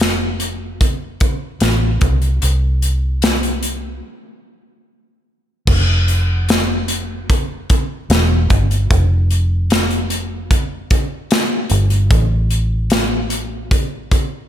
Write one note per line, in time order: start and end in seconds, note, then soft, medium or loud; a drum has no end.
0.00 1.57 F1 loud
0.00 snare medium
0.00 closed hi-hat medium
0.40 closed hi-hat medium
0.81 kick medium
0.81 closed hi-hat medium
1.20 kick medium
1.20 closed hi-hat medium
1.60 1.99 A1 medium
1.60 snare medium
1.60 closed hi-hat medium
2.01 2.39 C2 medium
2.01 kick medium
2.01 closed hi-hat medium
2.22 closed hi-hat soft
2.42 4.00 C2 loud
2.42 closed hi-hat medium
2.82 closed hi-hat medium
3.22 snare loud
3.22 closed hi-hat medium
3.43 closed hi-hat soft
3.63 closed hi-hat medium
5.67 8.06 F1 loud
5.67 kick loud
5.67 crash loud
6.08 closed hi-hat medium
6.49 snare loud
6.49 closed hi-hat medium
6.88 closed hi-hat medium
7.30 kick medium
7.30 closed hi-hat medium
7.70 kick medium
7.70 closed hi-hat medium
8.10 8.48 E1 medium
8.10 snare loud
8.10 closed hi-hat medium
8.50 8.88 G1 medium
8.50 kick medium
8.50 closed hi-hat medium
8.71 closed hi-hat soft
8.91 11.67 F1 loud
8.91 kick loud
8.91 closed hi-hat medium
9.31 closed hi-hat medium
9.70 snare loud
9.70 closed hi-hat medium
9.90 closed hi-hat soft
10.10 closed hi-hat medium
10.51 kick medium
10.51 closed hi-hat medium
10.91 kick medium
10.91 closed hi-hat medium
11.31 snare loud
11.31 closed hi-hat medium
11.70 12.08 G1 loud
11.70 closed hi-hat medium
11.90 closed hi-hat soft
12.11 14.48 A1 loud
12.11 kick loud
12.11 closed hi-hat medium
12.50 closed hi-hat medium
12.90 snare loud
12.90 closed hi-hat medium
13.30 closed hi-hat medium
13.71 kick medium
13.71 closed hi-hat medium
14.11 kick medium
14.11 closed hi-hat medium